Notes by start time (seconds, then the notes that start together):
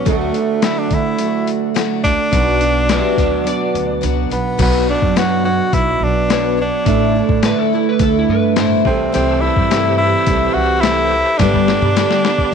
0.05 D2 D3 F#3 A3 D4 F#4, kick, closed hi-hat
0.09 A3
0.34 A3 D4 F#4, closed hi-hat
0.62 D3 F#3 A3 D4 E4 F#4, snare, closed hi-hat
0.79 D4
0.91 D3 A3 D4 E4 F#4, kick, closed hi-hat
1.19 F#3 A3 D4 F#4, closed hi-hat
1.47 closed hi-hat
1.74 D3 F#3 A3 D4 F#4, snare, closed hi-hat
2.03 C#2 A3 D4 F#4, kick, snare, closed hi-hat
2.31 B1 B2 F#3 B3 D4 F#4, kick, closed hi-hat
2.59 B3 D4 F#4, closed hi-hat
2.89 B2 F#3 B3 D4 F#4 E5, snare, closed hi-hat
2.93 G4
3.16 D2 B3 D4 F#4 D5, kick, closed hi-hat
3.44 F#3 B3 D4 F#4 D5, closed hi-hat
3.75 D2, closed hi-hat
4.01 C#2 B2 F#3 B3 D4 F#4, closed hi-hat
4.30 B1 B3 D4 F#4, closed hi-hat
4.57 B1 B2 F#3 B3 D4 F#4 C#5, kick, closed hi-hat, crash
4.62 B3
4.88 B3 D4 F#4 C#5
5.02 F#2, kick
5.16 B2 F#3 B3 D4 F#4 C#5, snare, closed hi-hat
5.44 B3 D4 F#4 C#5
5.72 B1 B3 D4 E4 F#4 C#5, kick, closed hi-hat
6.00 B1 D4
6.29 B2 F#3 B3 D4 F#4 C#5, snare, closed hi-hat
6.57 D4 F#4 C#5
6.61 B3 D4
6.86 A1 A2 D3 A3 D4 E4 A4, kick, closed hi-hat
7.15 D4 E4
7.19 A3
7.29 A2, kick
7.43 A2 D3 A3 D4 E4 B4, snare, closed hi-hat
7.59 A4
7.73 A3 D4 E4
7.89 B4
7.99 D2 D3 A3 D4 E4 A4, kick, closed hi-hat
8.19 E4
8.28 G2 B4
8.56 A2 D3 A3 D4 E4 C5, snare, closed hi-hat
8.84 C2 C3 E3 G3 A3 C4 E4 G4 A4, kick
9.12 C2 C3 E3 A3 C4 E4 G4 C5 A5 E6, closed hi-hat
9.41 A3 E4 G4
9.56 G2, kick
9.71 C3 E3 A3 E4 G4, snare, closed hi-hat
9.97 E4 G4
10.01 A3
10.27 C2 E3 A3 E4 G4, kick, closed hi-hat
10.54 C2 F#4
10.81 C3 E4, snare, closed hi-hat
10.86 E3 A3 E4 G4
11.13 A3 E4 G4
11.38 G1 G2 D3 G3 D4 D5 B5 D6, kick, snare, closed hi-hat
11.42 B3 D4 G4
11.54 kick
11.68 B3 D4 G4, snare
11.73 G3
11.82 G2, high tom
11.96 G2 D3 G3 B3 D4 G4, snare, closed hi-hat
12.11 snare
12.24 G3 B3 D4 G4, snare
12.38 kick